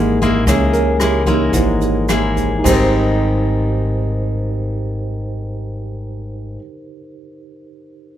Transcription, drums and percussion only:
0.21 kick, closed hi-hat, shaker
0.47 kick, cross-stick, closed hi-hat, shaker
0.73 closed hi-hat, shaker
1.00 cross-stick, closed hi-hat, shaker
1.26 kick, closed hi-hat, shaker
1.53 kick, closed hi-hat, shaker
1.81 closed hi-hat, shaker
2.09 cross-stick, closed hi-hat, shaker
2.37 kick, closed hi-hat, shaker
2.66 kick, crash, shaker

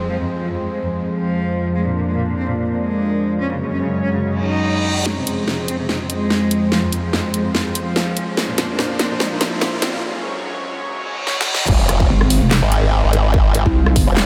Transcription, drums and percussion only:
5.06 snare
5.27 closed hi-hat
5.48 snare
5.68 closed hi-hat
5.89 snare
6.10 closed hi-hat
6.30 snare
6.51 closed hi-hat
6.72 snare
6.92 closed hi-hat
7.13 snare
7.34 closed hi-hat
7.55 snare
7.75 closed hi-hat
7.96 snare
8.17 closed hi-hat
8.37 snare
8.58 snare, closed hi-hat
8.79 snare
8.99 snare, closed hi-hat
9.20 snare
9.41 snare, closed hi-hat
9.61 snare
9.82 snare, closed hi-hat
11.27 snare
11.41 snare
11.54 snare
11.68 kick, crash
11.89 cross-stick, closed hi-hat
12.00 kick
12.21 cross-stick
12.30 open hi-hat
12.51 snare, clap
12.72 closed hi-hat
13.13 closed hi-hat
13.34 kick
13.55 closed hi-hat
13.66 kick
13.86 cross-stick
13.96 kick, open hi-hat
14.17 snare, clap

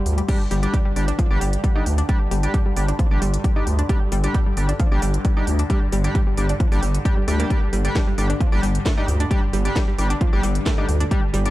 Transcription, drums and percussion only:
0.06 open hi-hat
0.18 closed hi-hat
0.28 kick, closed hi-hat, crash
0.51 open hi-hat
0.63 closed hi-hat
0.74 kick, closed hi-hat
0.96 open hi-hat
1.08 closed hi-hat
1.19 kick, closed hi-hat
1.41 open hi-hat
1.53 closed hi-hat
1.64 kick, closed hi-hat
1.86 open hi-hat
1.98 closed hi-hat
2.09 kick, closed hi-hat
2.31 open hi-hat
2.43 closed hi-hat
2.54 kick, closed hi-hat
2.77 open hi-hat
2.88 closed hi-hat
2.99 kick, closed hi-hat
3.22 open hi-hat
3.34 closed hi-hat
3.44 kick, closed hi-hat
3.67 open hi-hat
3.79 closed hi-hat
3.89 kick, closed hi-hat
4.12 open hi-hat
4.24 closed hi-hat
4.34 kick, closed hi-hat
4.57 open hi-hat
4.69 closed hi-hat
4.80 kick, closed hi-hat
5.02 open hi-hat
5.14 closed hi-hat
5.25 kick, closed hi-hat
5.47 open hi-hat
5.59 closed hi-hat
5.70 kick, closed hi-hat
5.92 open hi-hat
6.04 closed hi-hat
6.15 kick, closed hi-hat
6.37 open hi-hat
6.49 closed hi-hat
6.60 kick, closed hi-hat
6.72 open hi-hat
6.83 open hi-hat
6.95 closed hi-hat
7.05 kick, closed hi-hat
7.28 open hi-hat
7.40 closed hi-hat
7.50 kick, closed hi-hat
7.73 open hi-hat
7.85 closed hi-hat
7.95 kick, snare, closed hi-hat
8.18 open hi-hat
8.30 closed hi-hat
8.40 kick, closed hi-hat
8.63 open hi-hat
8.75 closed hi-hat
8.86 kick, snare, closed hi-hat
9.08 open hi-hat
9.20 closed hi-hat
9.31 kick, closed hi-hat
9.53 open hi-hat
9.65 closed hi-hat
9.76 kick, snare, closed hi-hat
9.98 open hi-hat
10.10 closed hi-hat
10.21 kick, closed hi-hat
10.43 open hi-hat
10.55 closed hi-hat
10.66 kick, snare, closed hi-hat
10.89 open hi-hat
11.00 closed hi-hat
11.11 kick, closed hi-hat
11.34 open hi-hat
11.46 closed hi-hat

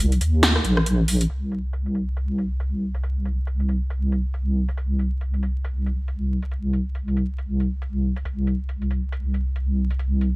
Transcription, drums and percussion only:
0.12 closed hi-hat
0.21 closed hi-hat
0.43 snare, closed hi-hat
0.56 cross-stick
0.65 closed hi-hat
0.77 cross-stick
0.86 closed hi-hat
1.08 open hi-hat
1.21 closed hi-hat
1.30 closed hi-hat
1.52 closed hi-hat
1.73 closed hi-hat
1.86 closed hi-hat
1.95 closed hi-hat
2.17 closed hi-hat
2.38 closed hi-hat
2.60 closed hi-hat
2.95 closed hi-hat
3.03 closed hi-hat
3.25 closed hi-hat
3.47 closed hi-hat
3.60 closed hi-hat
3.69 closed hi-hat
3.90 closed hi-hat
4.12 closed hi-hat
4.34 closed hi-hat
4.69 closed hi-hat
4.77 closed hi-hat
4.99 closed hi-hat
5.21 closed hi-hat
5.34 closed hi-hat
5.43 closed hi-hat
5.65 closed hi-hat
5.86 closed hi-hat
6.08 closed hi-hat
6.42 closed hi-hat
6.51 closed hi-hat
6.73 closed hi-hat
6.95 closed hi-hat
7.08 closed hi-hat
7.17 closed hi-hat
7.38 closed hi-hat
7.60 closed hi-hat
7.82 closed hi-hat
8.16 closed hi-hat
8.25 closed hi-hat
8.47 closed hi-hat
8.69 closed hi-hat
8.82 closed hi-hat
8.91 closed hi-hat
9.12 closed hi-hat
9.34 closed hi-hat
9.56 closed hi-hat
9.90 closed hi-hat
9.99 closed hi-hat
10.21 closed hi-hat

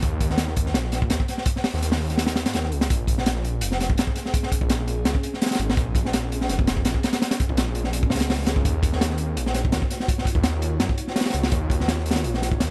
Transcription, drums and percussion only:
0.02 kick, closed hi-hat
0.20 kick, closed hi-hat
0.30 snare
0.38 snare, closed hi-hat
0.48 snare
0.56 kick, closed hi-hat
0.66 snare
0.74 snare, closed hi-hat
0.84 snare
0.92 snare, closed hi-hat
1.02 kick
1.10 snare, closed hi-hat
1.20 kick
1.28 snare, closed hi-hat
1.38 snare
1.46 kick, closed hi-hat
1.56 snare
1.64 snare, open hi-hat
1.74 snare
1.82 snare, closed hi-hat
1.92 snare, open hi-hat
2.01 snare
2.10 snare, closed hi-hat
2.18 snare, closed hi-hat
2.26 snare, closed hi-hat
2.36 snare, closed hi-hat
2.46 snare, closed hi-hat
2.53 snare, closed hi-hat
2.63 snare
2.72 closed hi-hat
2.81 snare, closed hi-hat
2.90 kick, closed hi-hat
3.07 kick, closed hi-hat
3.18 snare
3.26 snare, closed hi-hat
3.35 snare
3.44 closed hi-hat
3.61 closed hi-hat
3.72 snare
3.80 snare, closed hi-hat
3.90 kick
3.97 snare, closed hi-hat
4.07 kick
4.16 snare, closed hi-hat
4.26 snare
4.34 kick, closed hi-hat
4.43 snare
4.52 kick, closed hi-hat
4.61 kick
4.70 snare, closed hi-hat
4.88 closed hi-hat
5.05 snare, closed hi-hat
5.15 kick
5.23 closed hi-hat
5.34 snare
5.42 snare, closed hi-hat
5.46 snare, closed hi-hat
5.51 snare, closed hi-hat
5.55 snare, closed hi-hat
5.59 snare, closed hi-hat
5.69 snare, open hi-hat
5.77 kick, closed hi-hat
5.95 kick, closed hi-hat
6.05 snare
6.13 snare, closed hi-hat
6.23 snare
6.32 closed hi-hat
6.41 snare
6.49 snare, closed hi-hat
6.59 kick
6.67 snare, closed hi-hat
6.77 kick
6.85 snare, closed hi-hat
6.94 kick
7.03 snare, closed hi-hat
7.13 snare, closed hi-hat
7.22 snare, closed hi-hat
7.31 snare, closed hi-hat
7.40 kick, closed hi-hat
7.49 kick
7.57 snare, closed hi-hat
7.75 closed hi-hat
7.84 snare
7.93 closed hi-hat
8.03 kick
8.10 snare, closed hi-hat
8.16 snare, closed hi-hat
8.20 snare, closed hi-hat
8.30 snare, open hi-hat
8.39 snare
8.46 snare, closed hi-hat
8.56 kick
8.65 kick, closed hi-hat
8.83 kick, closed hi-hat
8.92 snare
9.01 snare, closed hi-hat
9.10 snare
9.18 closed hi-hat
9.37 closed hi-hat
9.46 snare
9.54 snare, closed hi-hat
9.65 kick
9.72 snare, closed hi-hat
9.82 kick
9.90 snare, closed hi-hat
10.00 snare
10.08 kick, closed hi-hat
10.18 snare
10.25 kick, closed hi-hat
10.35 kick
10.43 snare, closed hi-hat
10.62 closed hi-hat
10.80 snare, closed hi-hat
10.89 kick
10.98 closed hi-hat
11.07 snare
11.16 snare, closed hi-hat
11.20 snare, closed hi-hat
11.25 snare, closed hi-hat
11.30 snare, closed hi-hat
11.34 snare, closed hi-hat
11.43 snare, open hi-hat
11.52 kick, closed hi-hat
11.70 kick, closed hi-hat
11.80 snare
11.88 snare, closed hi-hat
11.97 snare
12.06 closed hi-hat
12.11 snare, closed hi-hat
12.16 snare, closed hi-hat
12.24 closed hi-hat
12.34 snare
12.42 snare, closed hi-hat
12.52 kick
12.60 snare, closed hi-hat

